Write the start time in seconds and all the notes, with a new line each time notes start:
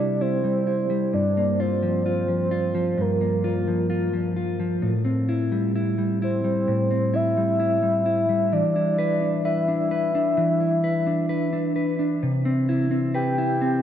Already playing: C3 G3 E4 D5
0.21 E4 C5
0.44 G3
0.67 E4
0.90 G3
1.13 G2 D5
1.37 A#3
1.60 F4 C5
1.83 F3
2.06 F4
2.28 F3
2.51 F4
2.75 F3
2.98 G2 A#4
3.21 A#3
3.44 F4
3.67 F3
3.90 F4
4.13 F3
4.36 F4
4.60 F3
4.82 A2
5.05 C4
5.29 E4
5.52 G3
5.75 E4
5.98 G3
6.22 E4 C5
6.44 G3
6.68 A2
6.91 C4
7.14 E4 E5
7.37 G3
7.60 E4
7.83 G3
8.06 E4
8.29 G3
8.52 E3 D5
8.76 E4
8.98 B4
9.21 D4
9.45 B4 E5
9.68 D4
9.91 B4
10.15 D4
10.37 E3
10.60 E4
10.84 B4
11.07 D4
11.29 B4
11.53 D4
11.76 B4
11.99 D4
12.23 C3
12.45 C4
12.69 E4
12.91 C4
13.14 B4 G5
13.38 E4
13.61 C4